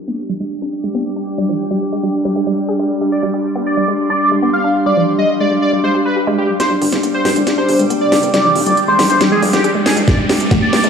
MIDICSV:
0, 0, Header, 1, 8, 480
1, 0, Start_track
1, 0, Tempo, 434783
1, 1525, Time_signature, 4, 2, 24, 8
1, 12029, End_track
2, 0, Start_track
2, 0, Title_t, "Analog synth pad"
2, 0, Program_c, 0, 89
2, 0, Note_on_c, 0, 62, 78
2, 0, Note_on_c, 0, 67, 73
2, 281, Note_on_c, 0, 79, 71
2, 314, Note_on_c, 0, 86, 87
2, 3526, Note_on_c, 0, 84, 86
2, 3670, Note_off_c, 0, 86, 0
2, 4542, Note_on_c, 0, 77, 71
2, 4685, Note_off_c, 0, 79, 0
2, 7416, Note_on_c, 0, 86, 88
2, 7805, Note_on_c, 0, 79, 76
2, 8311, Note_off_c, 0, 84, 0
2, 8868, Note_off_c, 0, 77, 0
2, 12029, Note_off_c, 0, 62, 0
2, 12029, Note_off_c, 0, 67, 0
2, 12029, Note_off_c, 0, 79, 0
2, 12029, Note_off_c, 0, 86, 0
2, 12029, End_track
3, 0, Start_track
3, 0, Title_t, "Analog synth lead"
3, 0, Program_c, 1, 81
3, 3445, Note_on_c, 1, 74, 97
3, 3556, Note_off_c, 1, 74, 0
3, 4045, Note_on_c, 1, 74, 94
3, 4267, Note_off_c, 1, 74, 0
3, 4525, Note_on_c, 1, 74, 99
3, 4747, Note_off_c, 1, 74, 0
3, 5005, Note_on_c, 1, 77, 95
3, 5171, Note_off_c, 1, 77, 0
3, 5365, Note_on_c, 1, 74, 94
3, 5531, Note_off_c, 1, 74, 0
3, 5725, Note_on_c, 1, 75, 88
3, 5836, Note_off_c, 1, 75, 0
3, 5965, Note_on_c, 1, 74, 87
3, 6076, Note_off_c, 1, 74, 0
3, 6205, Note_on_c, 1, 74, 86
3, 6316, Note_off_c, 1, 74, 0
3, 6445, Note_on_c, 1, 72, 88
3, 6556, Note_off_c, 1, 72, 0
3, 6684, Note_on_c, 1, 71, 93
3, 6851, Note_off_c, 1, 71, 0
3, 7045, Note_on_c, 1, 67, 87
3, 7156, Note_off_c, 1, 67, 0
3, 7285, Note_on_c, 1, 72, 101
3, 7396, Note_off_c, 1, 72, 0
3, 7885, Note_on_c, 1, 72, 97
3, 8107, Note_off_c, 1, 72, 0
3, 8365, Note_on_c, 1, 72, 97
3, 8586, Note_off_c, 1, 72, 0
3, 8844, Note_on_c, 1, 74, 98
3, 9011, Note_off_c, 1, 74, 0
3, 9205, Note_on_c, 1, 74, 96
3, 9371, Note_off_c, 1, 74, 0
3, 9565, Note_on_c, 1, 74, 91
3, 9676, Note_off_c, 1, 74, 0
3, 9804, Note_on_c, 1, 72, 91
3, 9915, Note_off_c, 1, 72, 0
3, 10045, Note_on_c, 1, 72, 89
3, 10156, Note_off_c, 1, 72, 0
3, 10285, Note_on_c, 1, 68, 89
3, 10396, Note_off_c, 1, 68, 0
3, 10525, Note_on_c, 1, 67, 97
3, 10691, Note_off_c, 1, 67, 0
3, 10885, Note_on_c, 1, 68, 85
3, 10996, Note_off_c, 1, 68, 0
3, 11124, Note_on_c, 1, 74, 99
3, 11236, Note_off_c, 1, 74, 0
3, 11725, Note_on_c, 1, 74, 99
3, 11947, Note_off_c, 1, 74, 0
3, 12029, End_track
4, 0, Start_track
4, 0, Title_t, "Ambient pad"
4, 0, Program_c, 2, 92
4, 0, Note_on_c, 2, 55, 77
4, 0, Note_on_c, 2, 62, 76
4, 7271, Note_off_c, 2, 55, 0
4, 7271, Note_off_c, 2, 62, 0
4, 7285, Note_on_c, 2, 55, 77
4, 7285, Note_on_c, 2, 62, 76
4, 12029, Note_off_c, 2, 55, 0
4, 12029, Note_off_c, 2, 62, 0
4, 12029, End_track
5, 0, Start_track
5, 0, Title_t, "Synth arpeggio sound"
5, 0, Program_c, 3, 84
5, 85, Note_on_c, 3, 59, 84
5, 120, Note_off_c, 3, 59, 0
5, 325, Note_on_c, 3, 55, 77
5, 412, Note_off_c, 3, 55, 0
5, 445, Note_on_c, 3, 56, 77
5, 503, Note_off_c, 3, 56, 0
5, 685, Note_on_c, 3, 62, 75
5, 720, Note_off_c, 3, 62, 0
5, 925, Note_on_c, 3, 56, 77
5, 1012, Note_off_c, 3, 56, 0
5, 1045, Note_on_c, 3, 59, 78
5, 1080, Note_off_c, 3, 59, 0
5, 1285, Note_on_c, 3, 62, 75
5, 1372, Note_off_c, 3, 62, 0
5, 1525, Note_on_c, 3, 55, 83
5, 1583, Note_off_c, 3, 55, 0
5, 1645, Note_on_c, 3, 53, 77
5, 1703, Note_off_c, 3, 53, 0
5, 1885, Note_on_c, 3, 55, 74
5, 1972, Note_off_c, 3, 55, 0
5, 2125, Note_on_c, 3, 56, 77
5, 2183, Note_off_c, 3, 56, 0
5, 2245, Note_on_c, 3, 55, 78
5, 2303, Note_off_c, 3, 55, 0
5, 2485, Note_on_c, 3, 55, 84
5, 2543, Note_off_c, 3, 55, 0
5, 2605, Note_on_c, 3, 56, 75
5, 2663, Note_off_c, 3, 56, 0
5, 2725, Note_on_c, 3, 55, 75
5, 2783, Note_off_c, 3, 55, 0
5, 2965, Note_on_c, 3, 68, 77
5, 3023, Note_off_c, 3, 68, 0
5, 3085, Note_on_c, 3, 56, 75
5, 3143, Note_off_c, 3, 56, 0
5, 3326, Note_on_c, 3, 56, 76
5, 3383, Note_off_c, 3, 56, 0
5, 3565, Note_on_c, 3, 55, 76
5, 3600, Note_off_c, 3, 55, 0
5, 3685, Note_on_c, 3, 67, 77
5, 3743, Note_off_c, 3, 67, 0
5, 3925, Note_on_c, 3, 59, 83
5, 3960, Note_off_c, 3, 59, 0
5, 4165, Note_on_c, 3, 55, 76
5, 4252, Note_off_c, 3, 55, 0
5, 4285, Note_on_c, 3, 56, 78
5, 4343, Note_off_c, 3, 56, 0
5, 4525, Note_on_c, 3, 62, 73
5, 4560, Note_off_c, 3, 62, 0
5, 4765, Note_on_c, 3, 56, 78
5, 4852, Note_off_c, 3, 56, 0
5, 4885, Note_on_c, 3, 59, 83
5, 4919, Note_off_c, 3, 59, 0
5, 5124, Note_on_c, 3, 62, 76
5, 5212, Note_off_c, 3, 62, 0
5, 5365, Note_on_c, 3, 55, 83
5, 5423, Note_off_c, 3, 55, 0
5, 5484, Note_on_c, 3, 53, 75
5, 5543, Note_off_c, 3, 53, 0
5, 5724, Note_on_c, 3, 55, 74
5, 5812, Note_off_c, 3, 55, 0
5, 5964, Note_on_c, 3, 56, 77
5, 6023, Note_off_c, 3, 56, 0
5, 6085, Note_on_c, 3, 55, 78
5, 6143, Note_off_c, 3, 55, 0
5, 6324, Note_on_c, 3, 55, 81
5, 6383, Note_off_c, 3, 55, 0
5, 6444, Note_on_c, 3, 56, 74
5, 6502, Note_off_c, 3, 56, 0
5, 6564, Note_on_c, 3, 67, 75
5, 6622, Note_off_c, 3, 67, 0
5, 6804, Note_on_c, 3, 67, 80
5, 6862, Note_off_c, 3, 67, 0
5, 6925, Note_on_c, 3, 56, 102
5, 6983, Note_off_c, 3, 56, 0
5, 7165, Note_on_c, 3, 55, 76
5, 7223, Note_off_c, 3, 55, 0
5, 7405, Note_on_c, 3, 55, 78
5, 7439, Note_off_c, 3, 55, 0
5, 7524, Note_on_c, 3, 67, 79
5, 7582, Note_off_c, 3, 67, 0
5, 7765, Note_on_c, 3, 59, 83
5, 7800, Note_off_c, 3, 59, 0
5, 8005, Note_on_c, 3, 55, 78
5, 8092, Note_off_c, 3, 55, 0
5, 8125, Note_on_c, 3, 56, 75
5, 8183, Note_off_c, 3, 56, 0
5, 8364, Note_on_c, 3, 62, 79
5, 8399, Note_off_c, 3, 62, 0
5, 8604, Note_on_c, 3, 56, 78
5, 8691, Note_off_c, 3, 56, 0
5, 8725, Note_on_c, 3, 59, 82
5, 8759, Note_off_c, 3, 59, 0
5, 8965, Note_on_c, 3, 62, 76
5, 9052, Note_off_c, 3, 62, 0
5, 9205, Note_on_c, 3, 55, 84
5, 9263, Note_off_c, 3, 55, 0
5, 9324, Note_on_c, 3, 53, 82
5, 9383, Note_off_c, 3, 53, 0
5, 9564, Note_on_c, 3, 55, 75
5, 9651, Note_off_c, 3, 55, 0
5, 9805, Note_on_c, 3, 56, 78
5, 9863, Note_off_c, 3, 56, 0
5, 9925, Note_on_c, 3, 55, 80
5, 9983, Note_off_c, 3, 55, 0
5, 10165, Note_on_c, 3, 55, 84
5, 10223, Note_off_c, 3, 55, 0
5, 10285, Note_on_c, 3, 56, 73
5, 10343, Note_off_c, 3, 56, 0
5, 10405, Note_on_c, 3, 55, 75
5, 10463, Note_off_c, 3, 55, 0
5, 10645, Note_on_c, 3, 68, 81
5, 10703, Note_off_c, 3, 68, 0
5, 10765, Note_on_c, 3, 56, 75
5, 10823, Note_off_c, 3, 56, 0
5, 11005, Note_on_c, 3, 56, 78
5, 11063, Note_off_c, 3, 56, 0
5, 11245, Note_on_c, 3, 55, 82
5, 11280, Note_off_c, 3, 55, 0
5, 11365, Note_on_c, 3, 67, 82
5, 11423, Note_off_c, 3, 67, 0
5, 11605, Note_on_c, 3, 59, 87
5, 11640, Note_off_c, 3, 59, 0
5, 11845, Note_on_c, 3, 55, 76
5, 11932, Note_off_c, 3, 55, 0
5, 11965, Note_on_c, 3, 56, 78
5, 12023, Note_off_c, 3, 56, 0
5, 12029, End_track
6, 0, Start_track
6, 0, Title_t, "Analog synth bass"
6, 0, Program_c, 4, 38
6, 7525, Note_on_c, 4, 31, 92
6, 7596, Note_off_c, 4, 31, 0
6, 7645, Note_on_c, 4, 31, 83
6, 7716, Note_off_c, 4, 31, 0
6, 8005, Note_on_c, 4, 43, 90
6, 8076, Note_off_c, 4, 43, 0
6, 8125, Note_on_c, 4, 31, 80
6, 8196, Note_off_c, 4, 31, 0
6, 8485, Note_on_c, 4, 31, 99
6, 8557, Note_off_c, 4, 31, 0
6, 8605, Note_on_c, 4, 31, 82
6, 8676, Note_off_c, 4, 31, 0
6, 8965, Note_on_c, 4, 31, 92
6, 9036, Note_off_c, 4, 31, 0
6, 9085, Note_on_c, 4, 31, 82
6, 9156, Note_off_c, 4, 31, 0
6, 9445, Note_on_c, 4, 29, 94
6, 9516, Note_off_c, 4, 29, 0
6, 9565, Note_on_c, 4, 29, 82
6, 9636, Note_off_c, 4, 29, 0
6, 9925, Note_on_c, 4, 31, 94
6, 9996, Note_off_c, 4, 31, 0
6, 10045, Note_on_c, 4, 31, 79
6, 10116, Note_off_c, 4, 31, 0
6, 10405, Note_on_c, 4, 31, 100
6, 10476, Note_off_c, 4, 31, 0
6, 10525, Note_on_c, 4, 31, 81
6, 10596, Note_off_c, 4, 31, 0
6, 10885, Note_on_c, 4, 26, 93
6, 10956, Note_off_c, 4, 26, 0
6, 11005, Note_on_c, 4, 26, 82
6, 11076, Note_off_c, 4, 26, 0
6, 11365, Note_on_c, 4, 31, 95
6, 11436, Note_off_c, 4, 31, 0
6, 11485, Note_on_c, 4, 31, 82
6, 11556, Note_off_c, 4, 31, 0
6, 11845, Note_on_c, 4, 43, 90
6, 11916, Note_off_c, 4, 43, 0
6, 11965, Note_on_c, 4, 31, 82
6, 12029, Note_off_c, 4, 31, 0
6, 12029, End_track
7, 0, Start_track
7, 0, Title_t, "Riser"
7, 0, Program_c, 5, 103
7, 7285, Note_on_c, 5, 60, 78
7, 12029, Note_off_c, 5, 60, 0
7, 12029, End_track
8, 0, Start_track
8, 0, Title_t, "Drums"
8, 7285, Note_on_c, 9, 38, 49
8, 7285, Note_on_c, 9, 42, 67
8, 7395, Note_off_c, 9, 38, 0
8, 7395, Note_off_c, 9, 42, 0
8, 7525, Note_on_c, 9, 46, 108
8, 7635, Note_off_c, 9, 46, 0
8, 7645, Note_on_c, 9, 38, 45
8, 7645, Note_on_c, 9, 42, 68
8, 7756, Note_off_c, 9, 38, 0
8, 7756, Note_off_c, 9, 42, 0
8, 7765, Note_on_c, 9, 42, 68
8, 7875, Note_off_c, 9, 42, 0
8, 8005, Note_on_c, 9, 38, 53
8, 8005, Note_on_c, 9, 46, 106
8, 8115, Note_off_c, 9, 38, 0
8, 8115, Note_off_c, 9, 46, 0
8, 8125, Note_on_c, 9, 42, 69
8, 8236, Note_off_c, 9, 42, 0
8, 8245, Note_on_c, 9, 38, 51
8, 8245, Note_on_c, 9, 42, 66
8, 8356, Note_off_c, 9, 38, 0
8, 8356, Note_off_c, 9, 42, 0
8, 8485, Note_on_c, 9, 46, 100
8, 8595, Note_off_c, 9, 46, 0
8, 8605, Note_on_c, 9, 42, 66
8, 8715, Note_off_c, 9, 42, 0
8, 8725, Note_on_c, 9, 42, 67
8, 8835, Note_off_c, 9, 42, 0
8, 8965, Note_on_c, 9, 38, 57
8, 8965, Note_on_c, 9, 46, 100
8, 9075, Note_off_c, 9, 38, 0
8, 9075, Note_off_c, 9, 46, 0
8, 9085, Note_on_c, 9, 42, 67
8, 9195, Note_off_c, 9, 42, 0
8, 9205, Note_on_c, 9, 38, 59
8, 9205, Note_on_c, 9, 42, 65
8, 9315, Note_off_c, 9, 38, 0
8, 9315, Note_off_c, 9, 42, 0
8, 9445, Note_on_c, 9, 46, 109
8, 9555, Note_off_c, 9, 46, 0
8, 9565, Note_on_c, 9, 42, 69
8, 9675, Note_off_c, 9, 42, 0
8, 9685, Note_on_c, 9, 42, 64
8, 9795, Note_off_c, 9, 42, 0
8, 9925, Note_on_c, 9, 38, 66
8, 9925, Note_on_c, 9, 46, 110
8, 10035, Note_off_c, 9, 38, 0
8, 10035, Note_off_c, 9, 46, 0
8, 10045, Note_on_c, 9, 42, 65
8, 10155, Note_off_c, 9, 42, 0
8, 10165, Note_on_c, 9, 38, 64
8, 10165, Note_on_c, 9, 42, 66
8, 10275, Note_off_c, 9, 38, 0
8, 10275, Note_off_c, 9, 42, 0
8, 10405, Note_on_c, 9, 46, 106
8, 10515, Note_off_c, 9, 46, 0
8, 10525, Note_on_c, 9, 38, 57
8, 10525, Note_on_c, 9, 42, 64
8, 10635, Note_off_c, 9, 38, 0
8, 10635, Note_off_c, 9, 42, 0
8, 10645, Note_on_c, 9, 42, 66
8, 10755, Note_off_c, 9, 42, 0
8, 10885, Note_on_c, 9, 38, 71
8, 10885, Note_on_c, 9, 46, 110
8, 10995, Note_off_c, 9, 38, 0
8, 10995, Note_off_c, 9, 46, 0
8, 11005, Note_on_c, 9, 42, 67
8, 11115, Note_off_c, 9, 42, 0
8, 11125, Note_on_c, 9, 36, 125
8, 11125, Note_on_c, 9, 38, 73
8, 11125, Note_on_c, 9, 42, 65
8, 11235, Note_off_c, 9, 36, 0
8, 11235, Note_off_c, 9, 38, 0
8, 11235, Note_off_c, 9, 42, 0
8, 11365, Note_on_c, 9, 38, 76
8, 11365, Note_on_c, 9, 46, 111
8, 11475, Note_off_c, 9, 38, 0
8, 11475, Note_off_c, 9, 46, 0
8, 11485, Note_on_c, 9, 42, 66
8, 11596, Note_off_c, 9, 42, 0
8, 11605, Note_on_c, 9, 36, 127
8, 11605, Note_on_c, 9, 38, 76
8, 11605, Note_on_c, 9, 42, 64
8, 11715, Note_off_c, 9, 36, 0
8, 11716, Note_off_c, 9, 38, 0
8, 11716, Note_off_c, 9, 42, 0
8, 11845, Note_on_c, 9, 38, 82
8, 11845, Note_on_c, 9, 46, 111
8, 11955, Note_off_c, 9, 38, 0
8, 11955, Note_off_c, 9, 46, 0
8, 11965, Note_on_c, 9, 42, 68
8, 12029, Note_off_c, 9, 42, 0
8, 12029, End_track
0, 0, End_of_file